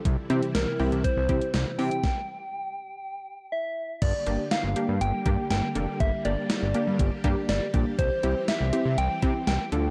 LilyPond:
<<
  \new Staff \with { instrumentName = "Soft synth lead" } { \time 4/4 \key g \dorian \tempo 4 = 121 r4 bes'4 c''4. g''8~ | g''2. e''4 | d''4 f''4 g''4 g''4 | e''8 d''2~ d''8 d''4 |
c''4 e''4 g''4 g''4 | }
  \new Staff \with { instrumentName = "Synth pluck" } { \time 4/4 \key g \dorian r8 <c' e' g'>8 r8 <c' e' g'>8 r8 <c' e' g'>8 r8 <c' e' g'>8 | r1 | r8 <bes d' g'>8 r8 <bes d' g'>8 r8 <bes d' g'>8 r8 <bes d' a'>8 | r8 <bes d' g'>8 r8 <bes d' g'>8 r8 <bes d' g'>8 r8 <bes d' g'>8 |
r8 <c' e' g'>8 r8 <c' e' g'>8 r8 <c' e' g'>8 r8 <d' f' a'>8 | }
  \new Staff \with { instrumentName = "String machine" } { \clef bass \time 4/4 \key g \dorian << { <e e'>1 | r1 | <g g'>1~ | <g g'>1~ |
<g g'>2.~ <g g'>8 <f f'>8 | } \\ { <c g>1 | r1 | <d bes>1~ | <d bes>1 |
<e c'>2.~ <e c'>8 <d a>8 | } >> }
  \new Staff \with { instrumentName = "Analog synth bass" } { \clef bass \time 4/4 \key g \dorian c,16 r16 c16 r16 c,16 r16 c,16 c,16 r16 c,16 c,16 r16 c,16 r16 c16 r16 | r1 | g,,16 r16 g,,16 r8 g,,16 r16 g,16 g,,16 r16 g,16 r16 g,,16 r16 f,,16 r16 | g,,16 r16 g,,16 r8 g,,16 r16 g,16 g,,16 r16 g,16 r16 g,,16 r16 bes,,16 r16 |
c,16 r16 c,16 r8 c,16 r16 c16 c,16 r16 c16 r16 c,16 r16 d,8 | }
  \new DrumStaff \with { instrumentName = "Drums" } \drummode { \time 4/4 <hh bd>8 hh16 hh16 <hh sn>8 hho16 hh16 <hh bd>8 <hh bd>16 hh16 <hh sn>8 hho16 hh16 | <bd sn>4 r4 r4 r4 | <cymc hh bd>8 hh8 <hh sn>8 hh8 hh8 <hh bd>8 <hh sn>8 hh8 | <hh bd>8 hh8 <hh sn>8 hh8 <hh bd>8 <hh bd>8 <hh sn>8 <hh bd>8 |
<hh bd>8 hh8 <hh sn>8 hh8 hh8 <hh bd>8 <hh sn>8 hh8 | }
>>